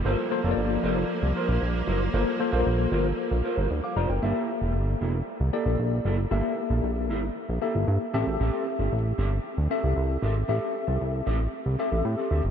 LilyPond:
<<
  \new Staff \with { instrumentName = "Tine electric piano" } { \time 4/4 \key g \dorian \tempo 4 = 115 << { r1 | r2. r16 <f'' d'''>16 <d'' bes''>16 <bes' g''>16~ | <bes' g''>16 r2. r8. | r1 |
r1 | r1 | } \\ { <bes f' a' c''>8 <bes f' a' c''>16 <bes f' a' cis'' d''>4. r4. r16 | <bes f' a' c''>8 <bes f' a' c''>16 <bes f' a' c''>4. r4. r16 | <bes g' a' e''>4. r4 <bes g' a' d''>4~ <bes g' a' d''>16 r16 | <bes g' a' e''>4. r4 <bes g' a' e''>4 <c' g' a' e''>8~ |
<c' g' a' e''>4 r4. <c' g' a' e''>4~ <c' g' a' e''>16 r16 | <c' g' a' e''>4. r4 <c' g' a' e''>4~ <c' g' a' e''>16 r16 | } >> }
  \new Staff \with { instrumentName = "Clean electric guitar" } { \time 4/4 \key g \dorian <f' bes' c''>8 r16 <f' bes' c''>16 r8 <f' bes' c''>16 r8. <f' bes' c''>16 <f' bes' c''>16 r8 <f' bes' c''>16 r16 | <f' bes' c''>8 r16 <f' bes' c''>16 r8 <f' bes' c''>16 r8. <f' bes' c''>16 <f' bes' c''>16 r8 <f' bes' c''>16 r16 | <bes e' a'>8 r16 <bes e' a'>16 r8 <bes e' a'>16 r8. <bes e' a'>16 <bes e' a'>16 r8 <bes e' a'>16 r16 | <bes e' a'>8 r16 <bes e' a'>16 r8 <bes e' a'>16 r8. <bes e' a'>16 <bes e' a'>16 r8 <c' g' a'>16 r16 |
<c' g' a'>8 r16 <c' g' a'>16 r8 <c' g' a'>16 r8. <c' g' a'>16 <c' g' a'>16 r8 <c' g' a'>16 r16 | <c' g' a'>8 r16 <c' g' a'>16 r8 <c' g' a'>16 r8. <c' g' a'>16 <c' g' a'>16 r16 <c' g' a'>16 <c' g' a'>16 r16 | }
  \new Staff \with { instrumentName = "String section" } { \clef bass \time 4/4 \key g \dorian <f g bes>1~ | <f g bes>1 | r1 | r1 |
r1 | r1 | }
  \new Staff \with { instrumentName = "Analog synth bass" } { \clef bass \time 4/4 \key g \dorian g,,16 r8 f,,16 g,,8 f,,8 r16 c,16 r16 bes,,16 bes,,8 fis,,8 | g,,16 r8 bes,,16 bes,,8 g,,8 r16 bes,,16 r16 g,,16 d,16 r16 f,,16 fis,,16 | g,,16 r8 e,,16 g,,8 e,,8 r16 c,16 r16 bes,,16 bes,,8 fis,,8 | g,,16 r8 bes,,16 bes,,8 g,,8 r16 bes,,16 r16 g,,16 g,16 r16 a,,16 aes,,16 |
a,,16 r8 g,,16 a,,8 g,,8 r16 d,16 r16 c,16 c,8 aes,,8 | a,,16 r8 c,16 c,8 a,,8 r16 c,16 r16 a,,16 a,16 r16 d,16 fis,,16 | }
>>